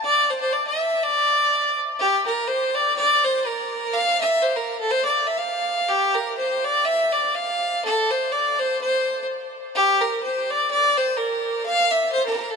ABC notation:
X:1
M:2/4
L:1/16
Q:"Swing" 1/4=124
K:Cmix
V:1 name="Fiddle"
d2 c c d e3 | d6 z2 | G2 B2 c2 d2 | d2 c2 B4 |
f2 e2 c B2 A | c d2 e f4 | G2 B2 c2 d2 | e2 d2 f4 |
A2 c2 d2 c2 | c4 z4 | G2 B2 c2 d2 | d2 c2 B4 |
f2 e2 c B2 A |]